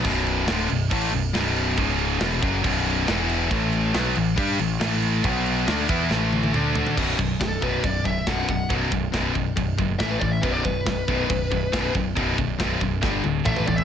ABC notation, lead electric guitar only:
X:1
M:4/4
L:1/16
Q:1/4=139
K:Bm
V:1 name="Lead electric guitar"
z16 | z16 | z16 | z16 |
z4 A2 B2 d2 e2 f2 f2 | z12 e B d e | B d B12 z2 | z12 e B d e |]